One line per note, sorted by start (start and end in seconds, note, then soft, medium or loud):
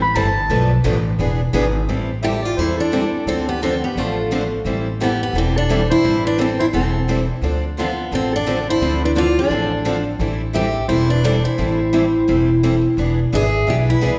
0.00 0.14 A1 medium
0.00 0.17 B5 loud
0.14 0.48 G1 loud
0.14 0.26 E3 medium
0.14 0.26 G3 loud
0.14 0.26 C4 medium
0.14 0.27 E4 loud
0.14 0.27 A4 loud
0.14 0.71 A5 loud
0.49 0.83 B1 medium
0.49 0.70 B2 medium
0.49 0.70 F3 medium
0.49 0.71 A3 medium
0.49 0.71 D4 medium
0.49 0.71 A4 medium
0.49 0.71 B4 medium
0.85 1.18 A1 loud
0.85 0.96 B2 medium
0.85 0.96 F3 medium
0.85 0.96 A3 medium
0.85 0.96 D4 loud
0.85 0.96 A4 loud
0.85 0.96 B4 loud
1.19 1.52 E1 medium
1.19 1.39 E3 medium
1.19 1.39 B3 medium
1.19 1.40 D4 medium
1.19 1.40 G#4 medium
1.19 1.40 B4 medium
1.53 1.87 G#1 loud
1.53 1.65 E3 medium
1.53 1.65 B3 medium
1.53 1.65 D4 medium
1.53 1.65 G#4 loud
1.53 1.65 B4 loud
1.89 2.44 A1 medium
1.89 2.09 E3 medium
1.89 2.09 G3 medium
1.89 2.09 C4 medium
1.89 2.09 E4 medium
1.89 2.09 A4 medium
2.22 2.34 E3 medium
2.22 2.34 G3 medium
2.22 2.34 C4 medium
2.22 2.34 E4 medium
2.22 2.45 G4 loud
2.22 2.35 A4 medium
2.22 2.44 E5 medium
2.42 2.59 F4 medium
2.42 2.58 D5 medium
2.57 3.13 E2 medium
2.57 2.78 E3 medium
2.57 2.78 G3 medium
2.57 2.78 C4 medium
2.57 2.79 E4 loud
2.57 2.79 E4 medium
2.57 2.79 A4 medium
2.57 2.77 C5 medium
2.78 3.28 D4 loud
2.78 3.23 A4 medium
2.93 3.03 E3 medium
2.93 3.03 G3 medium
2.93 3.04 C4 medium
2.93 3.04 E4 medium
2.93 3.04 A4 loud
3.26 3.82 D2 medium
3.26 3.48 D3 medium
3.26 3.48 F3 medium
3.26 3.48 C4 medium
3.26 3.48 D4 medium
3.26 3.47 A4 medium
3.26 3.48 A4 medium
3.48 3.61 B3 medium
3.48 3.61 G4 medium
3.61 3.72 D3 medium
3.61 3.72 F3 medium
3.61 3.73 C4 medium
3.61 3.81 C4 medium
3.61 3.73 D4 medium
3.61 3.81 A4 medium
3.61 3.73 A4 medium
3.84 3.98 B3 medium
3.84 4.00 G4 medium
3.95 4.51 A1 medium
3.95 4.17 D3 medium
3.95 4.17 F3 medium
3.95 4.53 A3 medium
3.95 4.17 C4 medium
3.95 4.17 D4 medium
3.95 4.53 F4 medium
3.95 4.17 A4 medium
4.31 4.42 D3 medium
4.31 4.42 F3 medium
4.31 4.42 C4 medium
4.31 4.42 D4 loud
4.31 4.42 A4 medium
4.65 5.20 A1 medium
4.65 4.86 E3 medium
4.65 4.86 G3 medium
4.65 4.86 C4 medium
4.65 4.86 E4 medium
4.65 4.86 A4 medium
5.00 5.11 E3 medium
5.00 5.11 G3 medium
5.00 5.21 B3 medium
5.00 5.11 C4 medium
5.00 5.11 E4 medium
5.00 5.20 G4 medium
5.00 5.11 A4 medium
5.23 5.35 B3 medium
5.23 5.35 G4 medium
5.33 5.89 E1 medium
5.33 5.55 E3 medium
5.33 5.55 G3 medium
5.33 5.56 C4 medium
5.33 5.56 E4 medium
5.33 5.55 A4 medium
5.33 5.56 A4 medium
5.38 5.57 C4 medium
5.56 5.92 D4 loud
5.56 5.88 A4 medium
5.69 5.80 E3 medium
5.69 5.80 G3 medium
5.69 5.80 C4 loud
5.69 5.80 E4 medium
5.69 5.80 A4 medium
5.90 6.23 E4 loud
5.90 6.22 C5 medium
6.03 6.59 A1 medium
6.03 6.24 E3 medium
6.03 6.25 G3 medium
6.03 6.25 C4 medium
6.03 6.25 E4 medium
6.03 6.25 A4 medium
6.25 6.40 D4 medium
6.25 6.38 B4 medium
6.38 6.49 E3 medium
6.38 6.49 G3 medium
6.38 6.49 C4 medium
6.38 6.61 C4 medium
6.38 6.50 E4 medium
6.38 6.50 A4 medium
6.38 6.59 A4 medium
6.59 6.65 E4 medium
6.59 6.66 C5 medium
6.73 7.29 E1 medium
6.73 6.94 E3 medium
6.73 6.94 G3 medium
6.73 6.94 C4 medium
6.73 7.25 C4 medium
6.73 6.94 E4 medium
6.73 7.25 A4 medium
6.73 6.94 A4 medium
7.08 7.19 E3 medium
7.08 7.19 G3 medium
7.08 7.19 C4 medium
7.08 7.19 E4 medium
7.08 7.20 A4 medium
7.41 7.97 D2 medium
7.41 7.63 D3 medium
7.41 7.63 F3 medium
7.41 7.63 C4 medium
7.41 7.63 D4 medium
7.41 7.63 A4 medium
7.77 7.88 D3 medium
7.77 7.88 F3 medium
7.77 8.14 B3 medium
7.77 7.88 C4 medium
7.77 7.88 D4 medium
7.77 8.10 F4 medium
7.77 7.89 A4 loud
8.11 8.67 A1 medium
8.11 8.32 D3 medium
8.11 8.32 F3 medium
8.11 8.32 C4 medium
8.11 8.33 C4 medium
8.11 8.32 D4 medium
8.11 8.33 A4 medium
8.11 8.32 A4 medium
8.33 8.67 D4 medium
8.33 8.65 A4 medium
8.46 8.57 D3 medium
8.46 8.57 F3 medium
8.46 8.58 C4 medium
8.46 8.58 D4 medium
8.46 8.58 A4 loud
8.69 9.01 E4 loud
8.69 9.01 C5 medium
8.81 9.37 D2 medium
8.81 9.01 D3 medium
8.81 9.02 F3 medium
8.81 9.02 C4 medium
8.81 9.02 D4 medium
8.81 9.02 A4 medium
9.04 9.10 D4 medium
9.04 9.10 B4 medium
9.15 9.27 D3 medium
9.15 9.26 F3 medium
9.15 9.27 C4 medium
9.15 9.27 D4 medium
9.15 9.39 F4 loud
9.15 9.27 A4 medium
9.15 9.36 D5 medium
9.39 10.03 D4 medium
9.39 10.04 A4 medium
9.50 10.06 A1 medium
9.50 9.71 D3 medium
9.50 9.71 F3 medium
9.50 9.71 C4 medium
9.50 9.71 D4 medium
9.50 9.72 A4 medium
9.85 9.96 D3 medium
9.85 9.96 F3 medium
9.85 9.96 C4 medium
9.85 9.96 D4 medium
9.85 9.96 A4 loud
10.19 10.75 A1 medium
10.19 10.40 E3 medium
10.19 10.40 G3 medium
10.19 10.41 C4 medium
10.19 10.41 E4 medium
10.19 10.41 A4 medium
10.54 10.66 E3 medium
10.54 10.66 G3 medium
10.54 10.66 C4 medium
10.54 10.66 E4 medium
10.54 10.88 G4 loud
10.54 10.66 A4 loud
10.54 10.87 E5 medium
10.88 11.44 E1 medium
10.88 11.10 E3 medium
10.88 11.10 G3 medium
10.88 11.10 C4 medium
10.88 11.08 E4 medium
10.88 11.10 E4 medium
10.88 11.10 A4 medium
10.88 11.08 C5 medium
11.10 11.24 D4 medium
11.10 11.23 B4 medium
11.23 11.35 E3 medium
11.23 11.35 G3 medium
11.23 11.35 C4 medium
11.23 11.45 D4 medium
11.23 11.35 E4 medium
11.23 11.43 A4 medium
11.23 11.35 A4 loud
11.43 12.80 E4 medium
11.43 12.79 C5 medium
11.58 12.14 A1 medium
11.58 11.79 E3 medium
11.58 11.79 G3 medium
11.58 11.79 C4 medium
11.58 11.80 E4 medium
11.58 11.80 A4 medium
11.93 12.04 E3 medium
11.93 12.04 G3 medium
11.93 12.05 C4 medium
11.93 12.05 E4 medium
11.93 12.05 A4 medium
12.29 12.84 E1 medium
12.29 12.49 E3 medium
12.29 12.49 G3 medium
12.29 12.49 C4 medium
12.29 12.49 E4 medium
12.29 12.49 A4 medium
12.64 12.74 E3 medium
12.64 12.74 G3 medium
12.64 12.74 C4 medium
12.64 12.75 E4 medium
12.64 12.75 A4 medium
12.97 13.25 E1 medium
12.97 13.19 E3 medium
12.97 13.19 B3 medium
12.97 13.19 D4 medium
12.97 13.19 G#4 medium
12.97 13.19 B4 medium
13.33 13.62 G#1 medium
13.33 13.43 E3 medium
13.33 13.44 B3 medium
13.33 13.44 D4 medium
13.33 13.44 G#4 medium
13.33 13.69 G#4 loud
13.33 13.44 B4 medium
13.33 13.66 E5 medium
13.67 13.97 B1 medium
13.67 13.88 E3 medium
13.67 13.88 B3 medium
13.67 13.88 D4 medium
13.67 13.75 G4 medium
13.67 13.88 G#4 medium
13.67 13.88 B4 medium
13.67 13.83 E5 medium
13.89 14.19 E4 medium
13.89 14.19 B4 medium
14.02 14.19 C2 medium
14.02 14.13 E3 medium
14.02 14.13 B3 medium
14.02 14.13 D4 medium
14.02 14.13 G#4 loud
14.02 14.13 B4 loud